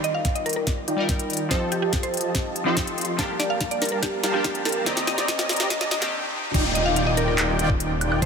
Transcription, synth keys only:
0, 0, Header, 1, 2, 480
1, 0, Start_track
1, 0, Tempo, 419580
1, 1726, Time_signature, 4, 2, 24, 8
1, 9445, End_track
2, 0, Start_track
2, 0, Title_t, "Synth keys"
2, 0, Program_c, 0, 88
2, 0, Note_on_c, 0, 55, 69
2, 0, Note_on_c, 0, 63, 64
2, 0, Note_on_c, 0, 70, 81
2, 0, Note_on_c, 0, 74, 65
2, 8, Control_c, 0, 64, 127
2, 1084, Note_off_c, 0, 55, 0
2, 1093, Note_off_c, 0, 74, 0
2, 1100, Note_off_c, 0, 63, 0
2, 1102, Note_on_c, 0, 55, 80
2, 1108, Note_off_c, 0, 70, 0
2, 1118, Note_on_c, 0, 74, 71
2, 1132, Note_on_c, 0, 63, 76
2, 1148, Note_on_c, 0, 70, 90
2, 1685, Note_off_c, 0, 55, 0
2, 1693, Note_off_c, 0, 74, 0
2, 1700, Note_off_c, 0, 63, 0
2, 1702, Note_on_c, 0, 53, 72
2, 1708, Note_off_c, 0, 70, 0
2, 1717, Note_on_c, 0, 60, 64
2, 1732, Note_on_c, 0, 63, 65
2, 1742, Control_c, 0, 64, 0
2, 1748, Note_on_c, 0, 69, 83
2, 1954, Control_c, 0, 64, 127
2, 3006, Note_off_c, 0, 53, 0
2, 3013, Note_off_c, 0, 60, 0
2, 3021, Note_off_c, 0, 63, 0
2, 3021, Note_on_c, 0, 53, 85
2, 3028, Note_off_c, 0, 69, 0
2, 3037, Note_on_c, 0, 60, 81
2, 3052, Note_on_c, 0, 63, 77
2, 3067, Note_on_c, 0, 69, 92
2, 3605, Note_off_c, 0, 53, 0
2, 3612, Note_off_c, 0, 60, 0
2, 3620, Note_off_c, 0, 63, 0
2, 3622, Note_on_c, 0, 53, 76
2, 3628, Note_off_c, 0, 69, 0
2, 3637, Note_on_c, 0, 58, 69
2, 3652, Note_on_c, 0, 62, 65
2, 3663, Control_c, 0, 64, 0
2, 3667, Note_on_c, 0, 67, 88
2, 3835, Control_c, 0, 64, 127
2, 4925, Note_off_c, 0, 53, 0
2, 4933, Note_off_c, 0, 58, 0
2, 4940, Note_off_c, 0, 62, 0
2, 4942, Note_on_c, 0, 53, 85
2, 4948, Note_off_c, 0, 67, 0
2, 4958, Note_on_c, 0, 58, 75
2, 4973, Note_on_c, 0, 62, 77
2, 4989, Note_on_c, 0, 67, 92
2, 5525, Note_off_c, 0, 53, 0
2, 5533, Note_off_c, 0, 58, 0
2, 5541, Note_off_c, 0, 62, 0
2, 5543, Note_on_c, 0, 51, 76
2, 5548, Note_off_c, 0, 67, 0
2, 5558, Note_on_c, 0, 58, 71
2, 5573, Note_on_c, 0, 60, 73
2, 5580, Control_c, 0, 64, 0
2, 5589, Note_on_c, 0, 67, 82
2, 5783, Control_c, 0, 64, 127
2, 6846, Note_off_c, 0, 51, 0
2, 6853, Note_off_c, 0, 58, 0
2, 6861, Note_off_c, 0, 60, 0
2, 6863, Note_on_c, 0, 51, 90
2, 6869, Note_off_c, 0, 67, 0
2, 6878, Note_on_c, 0, 58, 76
2, 6893, Note_on_c, 0, 60, 80
2, 6909, Note_on_c, 0, 67, 92
2, 6994, Note_off_c, 0, 51, 0
2, 7002, Note_off_c, 0, 58, 0
2, 7009, Note_off_c, 0, 60, 0
2, 7017, Note_off_c, 0, 67, 0
2, 7503, Control_c, 0, 64, 0
2, 9445, End_track
0, 0, End_of_file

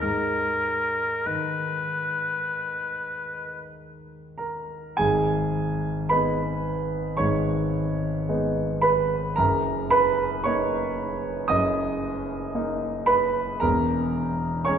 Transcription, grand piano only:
0, 0, Header, 1, 2, 480
1, 0, Start_track
1, 0, Key_signature, 5, "minor"
1, 0, Tempo, 1247401
1, 5, Time_signature, 4, 2, 24, 8
1, 1926, Tempo, 1117318
1, 2406, Tempo, 1084991
1, 4326, Tempo, 1050788
1, 6300, End_track
2, 0, Start_track
2, 0, Title_t, "Grand piano"
2, 0, Program_c, 0, 0
2, 0, Control_c, 0, 64, 127
2, 9, Note_on_c, 0, 44, 34
2, 14, Control_c, 0, 64, 0
2, 91, Control_c, 0, 64, 127
2, 485, Note_on_c, 0, 51, 22
2, 1684, Note_on_c, 0, 82, 38
2, 1688, Note_on_c, 0, 70, 32
2, 1906, Note_off_c, 0, 70, 0
2, 1911, Note_off_c, 0, 44, 0
2, 1912, Note_on_c, 0, 80, 64
2, 1917, Note_on_c, 0, 68, 53
2, 1920, Note_off_c, 0, 82, 0
2, 1920, Note_on_c, 0, 32, 34
2, 1920, Note_on_c, 0, 44, 36
2, 1924, Note_off_c, 0, 51, 0
2, 1930, Control_c, 0, 64, 0
2, 2006, Control_c, 0, 64, 127
2, 2383, Note_off_c, 0, 68, 0
2, 2393, Note_on_c, 0, 83, 59
2, 2397, Note_off_c, 0, 80, 0
2, 2400, Note_on_c, 0, 71, 49
2, 2401, Note_on_c, 0, 56, 26
2, 2403, Note_on_c, 0, 59, 30
2, 2404, Note_on_c, 0, 63, 30
2, 2863, Note_off_c, 0, 32, 0
2, 2863, Note_off_c, 0, 44, 0
2, 2863, Note_off_c, 0, 71, 0
2, 2864, Note_off_c, 0, 56, 0
2, 2865, Note_off_c, 0, 59, 0
2, 2865, Note_off_c, 0, 63, 0
2, 2868, Note_on_c, 0, 85, 59
2, 2873, Note_on_c, 0, 73, 49
2, 2877, Note_off_c, 0, 83, 0
2, 2879, Note_on_c, 0, 32, 33
2, 2879, Note_on_c, 0, 44, 35
2, 3364, Note_on_c, 0, 56, 28
2, 3365, Note_on_c, 0, 59, 28
2, 3366, Note_on_c, 0, 63, 34
2, 3586, Note_off_c, 0, 73, 0
2, 3597, Note_on_c, 0, 83, 61
2, 3602, Note_off_c, 0, 85, 0
2, 3604, Note_on_c, 0, 71, 52
2, 3826, Note_off_c, 0, 32, 0
2, 3826, Note_off_c, 0, 56, 0
2, 3826, Note_off_c, 0, 59, 0
2, 3827, Note_off_c, 0, 44, 0
2, 3827, Note_off_c, 0, 63, 0
2, 3827, Note_off_c, 0, 71, 0
2, 3837, Note_on_c, 0, 82, 71
2, 3840, Note_off_c, 0, 83, 0
2, 3841, Note_on_c, 0, 70, 51
2, 3846, Note_on_c, 0, 42, 43
2, 3847, Note_on_c, 0, 30, 40
2, 3853, Control_c, 0, 64, 0
2, 3924, Control_c, 0, 64, 127
2, 4066, Note_off_c, 0, 70, 0
2, 4079, Note_on_c, 0, 83, 77
2, 4081, Note_off_c, 0, 82, 0
2, 4083, Note_on_c, 0, 71, 59
2, 4307, Note_off_c, 0, 71, 0
2, 4315, Note_on_c, 0, 85, 66
2, 4322, Note_off_c, 0, 83, 0
2, 4322, Note_on_c, 0, 73, 49
2, 4325, Note_on_c, 0, 58, 33
2, 4327, Note_on_c, 0, 63, 31
2, 4787, Note_off_c, 0, 73, 0
2, 4789, Note_off_c, 0, 30, 0
2, 4789, Note_off_c, 0, 42, 0
2, 4789, Note_off_c, 0, 58, 0
2, 4790, Note_off_c, 0, 63, 0
2, 4790, Note_on_c, 0, 87, 69
2, 4797, Note_on_c, 0, 75, 57
2, 4798, Note_on_c, 0, 42, 39
2, 4801, Note_on_c, 0, 30, 40
2, 4802, Note_off_c, 0, 85, 0
2, 5260, Note_off_c, 0, 75, 0
2, 5275, Note_off_c, 0, 87, 0
2, 5277, Note_on_c, 0, 58, 34
2, 5280, Note_on_c, 0, 63, 33
2, 5514, Note_on_c, 0, 83, 72
2, 5518, Note_on_c, 0, 71, 57
2, 5746, Note_off_c, 0, 42, 0
2, 5748, Note_off_c, 0, 30, 0
2, 5748, Note_off_c, 0, 58, 0
2, 5748, Note_off_c, 0, 71, 0
2, 5749, Note_off_c, 0, 63, 0
2, 5759, Note_on_c, 0, 82, 68
2, 5763, Note_off_c, 0, 83, 0
2, 5765, Note_on_c, 0, 70, 54
2, 5768, Note_on_c, 0, 28, 44
2, 5769, Note_on_c, 0, 40, 44
2, 5776, Control_c, 0, 64, 0
2, 5862, Control_c, 0, 64, 127
2, 6227, Note_off_c, 0, 70, 0
2, 6237, Note_on_c, 0, 85, 72
2, 6242, Note_off_c, 0, 82, 0
2, 6242, Note_on_c, 0, 73, 54
2, 6246, Note_on_c, 0, 56, 32
2, 6250, Note_on_c, 0, 61, 36
2, 6253, Note_on_c, 0, 68, 33
2, 6300, Note_off_c, 0, 28, 0
2, 6300, Note_off_c, 0, 40, 0
2, 6300, Note_off_c, 0, 56, 0
2, 6300, Note_off_c, 0, 61, 0
2, 6300, Note_off_c, 0, 68, 0
2, 6300, Note_off_c, 0, 73, 0
2, 6300, Note_off_c, 0, 85, 0
2, 6300, End_track
0, 0, End_of_file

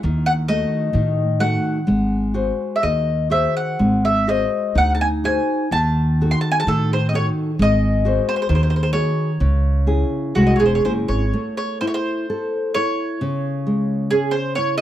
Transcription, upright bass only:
0, 0, Header, 1, 2, 480
1, 0, Start_track
1, 0, Key_signature, 4, "minor"
1, 0, Tempo, 917431
1, 18, Time_signature, 2, 2, 24, 8
1, 979, Tempo, 956938
1, 3379, Tempo, 913242
1, 4819, Tempo, 963082
1, 6259, Tempo, 909091
1, 7592, End_track
2, 0, Start_track
2, 0, Title_t, "Upright bass"
2, 0, Program_c, 0, 32
2, 21, Note_on_c, 0, 39, 87
2, 329, Note_off_c, 0, 39, 0
2, 495, Note_on_c, 0, 45, 83
2, 810, Note_off_c, 0, 45, 0
2, 983, Note_on_c, 0, 32, 78
2, 1292, Note_off_c, 0, 32, 0
2, 1461, Note_on_c, 0, 39, 73
2, 1773, Note_off_c, 0, 39, 0
2, 1944, Note_on_c, 0, 32, 81
2, 2257, Note_off_c, 0, 32, 0
2, 2424, Note_on_c, 0, 38, 83
2, 2736, Note_off_c, 0, 38, 0
2, 2905, Note_on_c, 0, 39, 81
2, 3215, Note_off_c, 0, 39, 0
2, 3385, Note_on_c, 0, 45, 79
2, 3702, Note_off_c, 0, 45, 0
2, 3871, Note_on_c, 0, 32, 85
2, 4178, Note_off_c, 0, 32, 0
2, 4346, Note_on_c, 0, 39, 82
2, 4656, Note_off_c, 0, 39, 0
2, 4825, Note_on_c, 0, 37, 84
2, 5132, Note_off_c, 0, 37, 0
2, 5299, Note_on_c, 0, 36, 82
2, 5377, Note_off_c, 0, 36, 0
2, 5421, Note_on_c, 0, 28, 78
2, 5530, Note_off_c, 0, 28, 0
2, 5547, Note_on_c, 0, 30, 67
2, 5654, Note_off_c, 0, 30, 0
2, 5662, Note_on_c, 0, 32, 74
2, 5772, Note_off_c, 0, 32, 0
2, 7592, End_track
0, 0, End_of_file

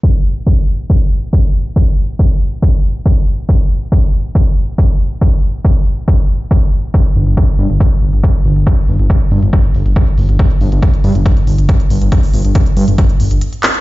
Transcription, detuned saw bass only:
0, 0, Header, 1, 2, 480
1, 0, Start_track
1, 0, Tempo, 431655
1, 38, Time_signature, 4, 2, 24, 8
1, 15352, End_track
2, 0, Start_track
2, 0, Title_t, "Detuned saw bass"
2, 0, Program_c, 0, 39
2, 7958, Note_on_c, 0, 31, 90
2, 8050, Note_off_c, 0, 31, 0
2, 8082, Note_on_c, 0, 31, 77
2, 8168, Note_off_c, 0, 31, 0
2, 8439, Note_on_c, 0, 43, 90
2, 8530, Note_off_c, 0, 43, 0
2, 8562, Note_on_c, 0, 31, 86
2, 8648, Note_off_c, 0, 31, 0
2, 8918, Note_on_c, 0, 31, 93
2, 9010, Note_off_c, 0, 31, 0
2, 9043, Note_on_c, 0, 31, 76
2, 9128, Note_off_c, 0, 31, 0
2, 9398, Note_on_c, 0, 31, 94
2, 9490, Note_off_c, 0, 31, 0
2, 9521, Note_on_c, 0, 31, 82
2, 9607, Note_off_c, 0, 31, 0
2, 9878, Note_on_c, 0, 31, 91
2, 9970, Note_off_c, 0, 31, 0
2, 10002, Note_on_c, 0, 31, 78
2, 10088, Note_off_c, 0, 31, 0
2, 10358, Note_on_c, 0, 43, 89
2, 10450, Note_off_c, 0, 43, 0
2, 10482, Note_on_c, 0, 31, 87
2, 10568, Note_off_c, 0, 31, 0
2, 10838, Note_on_c, 0, 31, 94
2, 10930, Note_off_c, 0, 31, 0
2, 10962, Note_on_c, 0, 31, 75
2, 11048, Note_off_c, 0, 31, 0
2, 11318, Note_on_c, 0, 31, 92
2, 11410, Note_off_c, 0, 31, 0
2, 11442, Note_on_c, 0, 31, 84
2, 11528, Note_off_c, 0, 31, 0
2, 11797, Note_on_c, 0, 31, 92
2, 11889, Note_off_c, 0, 31, 0
2, 11922, Note_on_c, 0, 31, 78
2, 12008, Note_off_c, 0, 31, 0
2, 12277, Note_on_c, 0, 43, 88
2, 12369, Note_off_c, 0, 43, 0
2, 12401, Note_on_c, 0, 31, 85
2, 12487, Note_off_c, 0, 31, 0
2, 12757, Note_on_c, 0, 31, 90
2, 12849, Note_off_c, 0, 31, 0
2, 12881, Note_on_c, 0, 31, 75
2, 12967, Note_off_c, 0, 31, 0
2, 13237, Note_on_c, 0, 31, 89
2, 13329, Note_off_c, 0, 31, 0
2, 13361, Note_on_c, 0, 31, 83
2, 13447, Note_off_c, 0, 31, 0
2, 13718, Note_on_c, 0, 31, 94
2, 13810, Note_off_c, 0, 31, 0
2, 13842, Note_on_c, 0, 31, 77
2, 13928, Note_off_c, 0, 31, 0
2, 14198, Note_on_c, 0, 43, 93
2, 14290, Note_off_c, 0, 43, 0
2, 14322, Note_on_c, 0, 31, 82
2, 14408, Note_off_c, 0, 31, 0
2, 14678, Note_on_c, 0, 31, 93
2, 14770, Note_off_c, 0, 31, 0
2, 14802, Note_on_c, 0, 31, 81
2, 14888, Note_off_c, 0, 31, 0
2, 15352, End_track
0, 0, End_of_file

